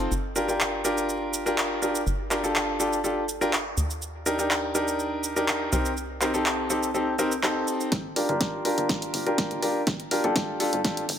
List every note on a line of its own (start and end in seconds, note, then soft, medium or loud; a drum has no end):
0.11 2.04 G1 medium
0.11 shaker soft
0.36 0.47 D4 medium
0.36 0.47 F4 medium
0.36 0.47 G4 medium
0.36 0.47 A#4 medium
0.36 shaker medium
0.48 0.82 D4 medium
0.48 0.82 F4 medium
0.48 0.82 G4 medium
0.48 0.82 A#4 medium
0.48 shaker soft
0.60 clap loud
0.60 shaker soft
0.85 1.43 D4 medium
0.85 1.43 F4 medium
0.85 1.43 G4 medium
0.85 1.43 A#4 medium
0.85 shaker medium
0.98 shaker soft
1.09 shaker soft
1.34 shaker medium
1.46 1.79 D4 medium
1.46 1.79 F4 medium
1.46 1.79 G4 medium
1.46 1.79 A#4 medium
1.46 shaker soft
1.58 clap loud
1.58 shaker soft
1.82 2.00 D4 medium
1.82 2.00 F4 medium
1.82 2.00 G4 medium
1.82 2.00 A#4 medium
1.82 shaker medium
1.95 shaker soft
2.06 3.75 G1 medium
2.06 shaker soft
2.31 2.41 D4 medium
2.31 2.41 F4 medium
2.31 2.41 G4 medium
2.31 2.41 A#4 medium
2.31 clap medium
2.31 shaker medium
2.44 2.77 D4 medium
2.44 2.77 F4 medium
2.44 2.77 G4 medium
2.44 2.77 A4 medium
2.44 shaker soft
2.56 clap loud
2.56 shaker soft
2.80 2.97 D4 medium
2.80 2.97 F4 medium
2.80 2.97 G4 medium
2.80 2.97 A4 medium
2.80 shaker medium
2.93 shaker soft
3.04 3.22 D4 medium
3.04 3.22 F4 medium
3.04 3.22 G4 medium
3.04 3.22 A4 medium
3.04 shaker soft
3.29 shaker medium
3.41 3.52 D4 medium
3.41 3.52 F4 medium
3.41 3.52 G4 medium
3.41 3.52 A#4 loud
3.41 shaker soft
3.53 clap loud
3.53 shaker soft
3.77 5.70 D#2 medium
3.77 shaker medium
3.90 shaker soft
4.02 shaker soft
4.26 4.37 D4 medium
4.26 4.37 D#4 medium
4.26 4.37 G4 medium
4.26 4.37 A#4 medium
4.26 shaker medium
4.39 4.72 D4 medium
4.39 4.72 D#4 medium
4.39 4.72 G4 medium
4.39 4.72 A#4 medium
4.39 shaker soft
4.51 clap loud
4.51 shaker soft
4.75 5.33 D4 medium
4.75 5.33 D#4 medium
4.75 5.33 G4 medium
4.75 5.33 A#4 medium
4.75 shaker medium
4.88 shaker soft
4.99 shaker soft
5.24 shaker medium
5.36 5.70 D4 medium
5.36 5.70 D#4 medium
5.36 5.70 G4 medium
5.36 5.70 A#4 medium
5.36 shaker soft
5.48 clap loud
5.48 shaker soft
5.72 7.65 C2 medium
5.72 5.90 C4 medium
5.72 5.90 D#4 medium
5.72 5.90 G4 medium
5.72 5.90 A#4 medium
5.72 shaker medium
5.85 shaker soft
5.97 shaker soft
6.21 6.31 C4 medium
6.21 6.31 D#4 medium
6.21 6.31 G4 medium
6.21 6.31 A#4 medium
6.21 clap medium
6.21 shaker medium
6.34 6.67 C4 medium
6.34 6.67 D#4 medium
6.34 6.67 G4 medium
6.34 6.67 A4 medium
6.34 shaker soft
6.46 clap loud
6.46 shaker soft
6.70 6.88 C4 medium
6.70 6.88 D#4 medium
6.70 6.88 G4 medium
6.70 6.88 A4 medium
6.70 shaker medium
6.83 shaker soft
6.94 7.12 C4 medium
6.94 7.12 D#4 medium
6.94 7.12 G4 medium
6.94 7.12 A4 medium
6.94 shaker soft
7.19 7.30 C4 medium
7.19 7.30 D#4 medium
7.19 7.30 G4 medium
7.19 7.30 A#4 medium
7.19 shaker medium
7.32 shaker soft
7.43 7.90 C4 medium
7.43 7.90 D#4 medium
7.43 7.90 G4 medium
7.43 7.90 A4 loud
7.43 clap loud
7.43 shaker soft
7.68 shaker medium
7.80 shaker soft
7.92 8.25 G1 loud
7.92 kick loud
7.92 snare soft
7.92 closed hi-hat medium
8.16 8.27 D4 medium
8.16 8.27 F4 medium
8.16 8.27 G4 medium
8.16 8.27 A#4 medium
8.16 open hi-hat loud
8.29 8.61 G1 medium
8.29 8.62 D4 medium
8.29 8.62 F4 medium
8.29 8.62 G4 medium
8.29 8.62 A#4 medium
8.29 closed hi-hat soft
8.41 kick loud
8.41 snare soft
8.41 closed hi-hat medium
8.65 9.23 D4 medium
8.65 9.23 F4 medium
8.65 9.23 G4 medium
8.65 9.23 A#4 medium
8.65 open hi-hat loud
8.78 9.10 G1 medium
8.78 closed hi-hat medium
8.89 kick loud
8.89 snare soft
8.89 closed hi-hat medium
9.02 closed hi-hat medium
9.14 9.47 G1 medium
9.14 open hi-hat loud
9.26 9.60 D4 medium
9.26 9.60 F4 medium
9.26 9.60 G4 medium
9.26 9.60 A#4 medium
9.26 closed hi-hat soft
9.38 kick loud
9.38 snare soft
9.38 closed hi-hat medium
9.51 9.83 G1 medium
9.51 closed hi-hat soft
9.62 9.80 D4 medium
9.62 9.80 F4 medium
9.62 9.80 G4 medium
9.62 9.80 A#4 medium
9.62 open hi-hat loud
9.87 10.20 G1 loud
9.87 kick loud
9.87 snare soft
9.87 closed hi-hat medium
10.00 closed hi-hat soft
10.11 10.21 D4 medium
10.11 10.21 F4 medium
10.11 10.21 G4 medium
10.11 10.21 A#4 medium
10.11 open hi-hat loud
10.24 10.56 G1 loud
10.24 10.57 D4 medium
10.24 10.57 F4 medium
10.24 10.57 G4 medium
10.24 10.57 A4 medium
10.24 closed hi-hat soft
10.36 kick loud
10.36 snare medium
10.36 closed hi-hat medium
10.60 10.78 D4 medium
10.60 10.78 F4 medium
10.60 10.78 G4 medium
10.60 10.78 A4 medium
10.60 open hi-hat loud
10.73 11.05 G1 medium
10.73 closed hi-hat medium
10.84 11.02 D4 medium
10.84 11.02 F4 medium
10.84 11.02 G4 medium
10.84 11.02 A4 medium
10.84 kick loud
10.84 snare medium
10.84 closed hi-hat medium
10.97 closed hi-hat medium
11.09 11.19 G1 medium
11.09 open hi-hat loud